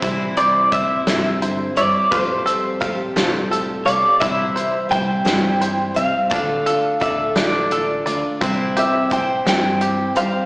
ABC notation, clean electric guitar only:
X:1
M:6/8
L:1/8
Q:3/8=57
K:C
V:1 name="Clean electric guitar"
z d e2 z d | c4 z d | e2 g3 f- | f2 e d2 z |
z e g g2 f |]